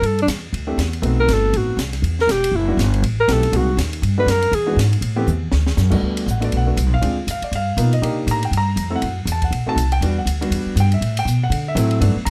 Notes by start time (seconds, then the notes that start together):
0.02 G2, ride
0.06 A4
0.19 D4, ride
0.27 E2, snare, hi-hat pedal, ride
0.53 D2, ride
0.67 A3 C4 D4 E4 G4
0.78 E2, snare, hi-hat pedal, ride
0.93 ride
1.02 B1 A3 B3 C4 D#4 F#4, ride
1.20 A#4
1.28 G1, snare, hi-hat pedal, ride
1.32 A4
1.53 A1 F#4, ride
1.77 C2, snare, hi-hat pedal, ride
1.93 snare, ride
2.02 E2, ride
2.19 A#4, snare
2.27 E1 G4, snare, hi-hat pedal, ride
2.44 ride
2.52 F#1
2.56 E4
2.68 G3 B3 D4 E4 F#4
2.77 G1, snare, hi-hat pedal, ride
2.94 ride
3.02 A1, ride
3.20 A#4
3.28 B1 A3 B3 C4 E4 G4, snare, hi-hat pedal, ride
3.32 A4
3.43 ride
3.52 C2 G#3 A#3 C4 D#4 F#4, ride
3.56 F#4
3.77 D#2, snare, hi-hat pedal, ride
3.93 ride
4.02 G2, ride
4.18 G3 A3 B3 D4 F#4 B4
4.26 F#2, snare, hi-hat pedal, ride
4.30 A#4
4.42 ride
4.52 E2 G#4, ride
4.67 E3 G#3 B3 D4 F#4
4.76 G#2, snare, hi-hat pedal, ride
4.93 ride
5.01 A2, ride
5.16 E3 A3 B3 C4 G4
5.27 E2, hi-hat pedal, mid tom
5.52 D2, snare
5.67 snare
5.77 F#2, snare, hi-hat pedal
5.90 G3 A3 B3 D4 F#4, kick, crash
6.02 D2
6.17 ride
6.26 A1, hi-hat pedal
6.31 F#5
6.40 A3 B3 D4 F#4, ride
6.45 D5
6.52 B1, ride
6.57 F#5
6.66 A3 B3 D4 F#4
6.77 C2, hi-hat pedal, ride
6.86 B1
6.94 G1 F5
7.02 D2 G#3 C4 D4 F4, ride
7.27 F2 F5, hi-hat pedal, ride
7.42 D5, muted upright bass stroke, ride
7.52 G2 F5, ride
7.77 B2 A#3 B3 D#4 F4, hi-hat pedal, ride
7.93 D#5, ride
8.02 C3 A#3 D4 D#4 G4, ride
8.27 A2, hi-hat pedal, ride
8.31 A#5
8.43 G5, ride
8.51 G2, ride
8.57 A#5
8.76 F2, hi-hat pedal, ride
8.90 A3 C4 E4 A4
8.96 F#5
9.02 F#2, ride
9.25 E2, hi-hat pedal, ride
9.32 A5
9.42 F#5, kick, ride
9.51 B1, ride
9.66 A3 C4 D#4 F#4 A5, muted upright bass stroke
9.76 C2, hi-hat pedal, ride
9.92 G5, ride
10.01 E2 G3 B3 D4 F#4, ride
10.18 F#5
10.26 D2, hi-hat pedal, ride
10.41 G3 B3 D4 F#4, ride
10.50 E2, ride
10.66 muted upright bass stroke
10.76 G2, hi-hat pedal, ride
10.80 G5
10.92 E5, ride
11.01 A2, ride
11.17 G5, ride
11.25 B2, hi-hat pedal
11.43 F#5
11.50 D3, ride
11.68 E5
11.75 A2 F#3 A3 C4 E4, hi-hat pedal, ride
11.91 ride
12.01 G2 F#3 A3 B3 D4, ride
12.16 muted upright bass stroke
12.25 B2 A#5, hi-hat pedal, ride